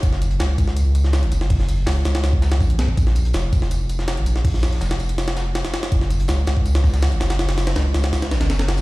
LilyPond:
<<
  \new Staff \with { instrumentName = "Sub bass" } { \clef bass \time 4/4 \key ges \lydian \tempo 4 = 163 ges,,4 des,8 des,4.~ des,16 ges,,16 ges,,8~ | ges,,4 des,8 des,4. a,,8 des,16 ges,,16 | bes,,4 f,,8 f,,4.~ f,,16 bes,,16 bes,,8~ | bes,,4 f,,8 f,,4.~ f,,16 r8. |
ges,,4 des,8 des,4.~ des,16 ges,,16 ges,,8~ | ges,,4 des,8 des,8 des,8 a,,16 ges,,4~ ges,,16 | }
  \new DrumStaff \with { instrumentName = "Drums" } \drummode { \time 4/4 <hh bd tamb>16 sn16 <hh tamb>16 hh16 <hh sn tamb>8 <hh bd tamb>16 sn16 <hh tamb>8 <hh tamb>16 sn16 <hh sn tamb>16 hh16 <hh tamb>16 sn16 | <hh hho bd>16 sn16 <hh tamb>8 <hho sn tamb>8 <hh sn tamb>16 <hh sn>16 <hh sn tamb>16 bd16 <hh sn tamb>16 <hh sn>16 <bd tamb>16 hh16 <hh sn tamb>16 bd16 | <hh bd tamb>16 sn16 <hh tamb>16 hh16 <hh sn tamb>8 <hh bd tamb>16 sn16 <hh tamb>8 <hh tamb>16 sn16 <hh sn tamb>16 hh16 <hh tamb>16 sn16 | <hh hho bd>16 sn16 <hh sn tamb>16 <hh sn>16 <hh sn tamb>16 <hh sn>16 <hh tamb>16 hh16 <hh sn tamb>16 <hh sn>16 <hh sn tamb>8 <hh sn tamb>16 <hh sn>16 <hh sn tamb>16 <hh sn>16 |
<hh bd tamb>16 sn16 <hh tamb>16 hh16 <hh sn tamb>8 <hh sn tamb>16 bd16 <hh tamb>16 <hh sn>16 <bd sn tamb>16 <hh sn tamb>16 <hh sn tamb>16 hh16 <hh sn tamb>16 <hh sn tamb>16 | <hh hho sn>16 <hh sn>16 <hh sn tamb>16 <hh sn>16 <hh sn tamb>8 <hh sn tamb>16 <hh sn>16 <hh sn tamb>16 <hh sn>16 <hh sn tamb>16 <hh sn>16 <hh sn tamb>16 <hh sn>16 <hh sn tamb>16 <hh sn tamb>16 | }
>>